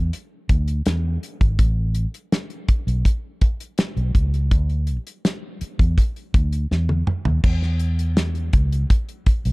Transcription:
Already playing: fingered electric bass E2
0.13 closed hi-hat
0.49 fingered electric bass D2, kick, closed hi-hat
0.68 closed hi-hat
0.86 fingered electric bass E2, snare, closed hi-hat
1.23 closed hi-hat
1.41 fingered electric bass G#1, kick, closed hi-hat
1.59 fingered electric bass A1, kick, closed hi-hat
1.95 closed hi-hat
2.14 closed hi-hat
2.32 snare, closed hi-hat
2.50 closed hi-hat
2.68 muted fingered electric bass stroke, kick, closed hi-hat
2.87 fingered electric bass B1, closed hi-hat
3.05 kick, closed hi-hat
3.41 kick, closed hi-hat
3.60 closed hi-hat
3.78 snare, closed hi-hat
3.97 fingered electric bass B1, closed hi-hat
4.15 fingered electric bass C#2, kick, closed hi-hat
4.34 closed hi-hat
4.51 fingered electric bass D2, kick, closed hi-hat
4.70 closed hi-hat
4.87 closed hi-hat
5.07 closed hi-hat
5.25 snare, closed hi-hat
5.61 muted fingered electric bass stroke, closed hi-hat
5.79 fingered electric bass E2, kick, closed hi-hat
5.98 kick, closed hi-hat
6.16 closed hi-hat
6.34 fingered electric bass D2, kick, closed hi-hat
6.53 closed hi-hat
6.71 fingered electric bass E2, snare
6.89 high tom
7.07 mid tom
7.25 fingered electric bass D#2, floor tom
7.44 fingered electric bass E2, kick, crash
7.62 snare
7.79 closed hi-hat
7.99 closed hi-hat
8.17 snare, closed hi-hat
8.35 closed hi-hat
8.53 fingered electric bass C#2, kick, closed hi-hat
8.72 closed hi-hat
8.90 kick, closed hi-hat
9.09 closed hi-hat
9.26 muted fingered electric bass stroke, kick, closed hi-hat
9.45 fingered electric bass B1, closed hi-hat

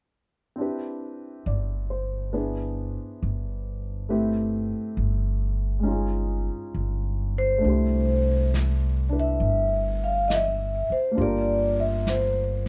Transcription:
0.56 grand piano C4 D4 E4
0.60 grand piano G4 B4
1.46 upright bass G1, grand piano D5
1.90 grand piano C5
2.33 grand piano B3 D4 E4 G#4 B4
3.23 upright bass G1
4.09 grand piano A3 C4 E4 G4 B4
4.97 upright bass G1
5.79 grand piano G#3 C#4
5.85 grand piano D#4 F4
5.92 grand piano G#4
6.75 upright bass G1
7.38 vibraphone C5
7.58 grand piano A3 D4
7.64 upright bass C2, grand piano E4 G4, brush sweep
7.69 grand piano C5
8.54 snare, hi-hat pedal
9.09 grand piano D4 E4 B4
9.20 vibraphone E5
9.40 upright bass G1, brush sweep
10.04 vibraphone F5
10.28 vibraphone D#5, snare, hi-hat pedal
10.34 vibraphone E5
10.90 vibraphone C5, muted upright bass stroke
11.11 grand piano A#3 D4
11.17 upright bass G1, grand piano F4 G4, brush sweep
11.22 grand piano A#4, vibraphone D5
11.80 vibraphone E5
12.07 vibraphone C5, snare, hi-hat pedal

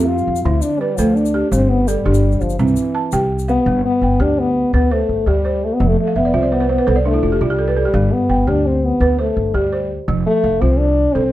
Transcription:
Already playing: upright bass F2, balafon C4 F4 G4
0.07 french horn F4
0.18 shaker
0.27 upright bass F2
0.36 shaker
0.44 upright bass D2, balafon D3, french horn E4
0.62 french horn D4, shaker
0.80 french horn G3, balafon B4
0.97 upright bass D2, french horn F3, balafon A3 A4, shaker
1.16 french horn D4, shaker
1.26 shaker
1.34 balafon G4
1.51 upright bass G1, balafon G3, french horn C4, shaker
1.70 french horn B3
1.88 french horn G3, balafon A4, shaker
2.06 upright bass G1, balafon D4 G4
2.14 shaker
2.32 shaker
2.41 upright bass G1, french horn F3, shaker
2.50 shaker
2.59 upright bass C2, french horn E3, balafon C4, shaker
2.68 shaker
2.76 shaker
2.95 balafon A5
3.12 upright bass C2, balafon G4 G5, shaker
3.39 shaker
3.48 french horn B3, balafon F5, shaker
3.66 upright bass G1, balafon G3
3.85 french horn B3
4.02 upright bass G1, balafon G5
4.20 upright bass D2, french horn D4, balafon G4
4.39 french horn B3
4.73 upright bass D2, french horn B3, balafon B4
4.91 french horn A3, balafon C5
5.09 upright bass G1
5.26 upright bass D2, french horn G3, balafon G4
5.45 balafon C5
5.65 french horn A3
5.74 french horn B3
5.80 upright bass F1, balafon F3
5.87 french horn A3
6.00 french horn A3
6.07 balafon F5
6.16 upright bass F1, french horn B3, balafon E5
6.25 balafon D5
6.34 upright bass C2, french horn C4, balafon F4 E5
6.43 balafon D5
6.52 french horn B3, balafon C5
6.60 balafon B4
6.69 french horn B3, balafon C5
6.78 balafon B4
6.87 upright bass C2, french horn B3, balafon A4 C5
6.96 balafon D5
7.05 french horn A3, balafon D4
7.14 balafon E4
7.23 upright bass F1, balafon F4
7.32 balafon G4
7.41 upright bass C2, french horn G3, balafon F4
7.50 balafon G4
7.59 balafon A4
7.68 balafon B4
7.77 french horn G3, balafon A4
7.85 balafon G4
7.94 upright bass G1, balafon G3
8.12 french horn B3
8.29 upright bass G1, balafon G5
8.47 upright bass D2, french horn D4, balafon G4
8.66 french horn C4
8.85 french horn B3
9.00 upright bass D2, balafon B4
9.19 french horn A3, balafon C5
9.37 upright bass G1
9.54 upright bass D2, french horn G3, balafon G4
9.73 balafon C5
10.08 upright bass F1, balafon F3
10.26 french horn A3
10.44 upright bass F1, balafon F5
10.61 upright bass C2, french horn C4, balafon F4
10.79 french horn D4
11.14 upright bass C2, french horn C4, balafon A4

